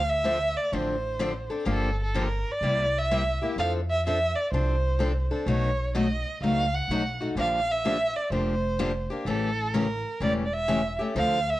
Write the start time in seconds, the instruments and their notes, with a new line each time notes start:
Already playing: upright bass D2, violin F5
0.09 violin E5
0.24 steel-string acoustic guitar D3 F3 C4 D4 A4
0.57 violin D5
0.72 upright bass A1, steel-string acoustic guitar D3 F3 C4 D4 A4, violin C5
1.19 steel-string acoustic guitar D3 F3 C4 D4 A4
1.50 steel-string acoustic guitar C4 D4 A4
1.65 upright bass G1, steel-string acoustic guitar D3 F3 A#3 D4 G4
1.72 violin A4
2.04 violin A4
2.15 steel-string acoustic guitar D3 F3 A#3 D4 G4
2.21 violin A#4
2.52 violin D5
2.61 upright bass C2, steel-string acoustic guitar C3 G3 A#3 E4 G4
2.99 violin E5
3.12 steel-string acoustic guitar C3 G3 A#3 E4 G4
3.42 steel-string acoustic guitar A#3 E4 G4
3.56 upright bass F2, steel-string acoustic guitar F3 C4 D4 A4, violin F5
3.90 violin E5
4.06 steel-string acoustic guitar F3 C4 D4 A4, violin E5
4.35 violin D5
4.52 upright bass C2, steel-string acoustic guitar F3 C4 D4 A4, violin C5
4.99 steel-string acoustic guitar F3 C4 D4 A4
5.31 steel-string acoustic guitar C4 D4 A4
5.46 upright bass B1, steel-string acoustic guitar B2 F#3 A3 D#4 F#4, violin C#5
5.95 steel-string acoustic guitar B2 F#3 A3 D#4 F#4, violin D#5
6.41 upright bass C#2, steel-string acoustic guitar B2 F#3 A3 D#4 F#4, violin F5
6.75 violin F#5
6.88 upright bass B1, steel-string acoustic guitar B2 F#3 A3 D#4 F#4
7.21 steel-string acoustic guitar A3 D#4 F#4
7.35 upright bass A#1, steel-string acoustic guitar D3 F3 A#3 D4 G4
7.40 violin F5
7.72 violin E5
7.85 steel-string acoustic guitar D3 F3 A#3 D4 G4
8.16 violin D5
8.30 upright bass F1, steel-string acoustic guitar D3 F3 A#3 D4 G4, violin C5
8.79 steel-string acoustic guitar D3 F3 A#3 D4 G4
9.10 steel-string acoustic guitar A#3 D4 G4
9.25 upright bass A1, steel-string acoustic guitar C#3 E3 A3 C#4 G4, violin A4
9.74 steel-string acoustic guitar C#3 E3 A3 C#4 G4, violin A#4
10.20 upright bass E1, steel-string acoustic guitar C#3 E3 A3 C#4 G4, violin D5
10.45 violin D5
10.53 violin E5
10.68 steel-string acoustic guitar C#3 E3 A3 C#4 G4
10.99 steel-string acoustic guitar A3 C#4 G4
11.15 upright bass D2, steel-string acoustic guitar D3 F3 C4 D4 A4, violin F5
11.50 violin E5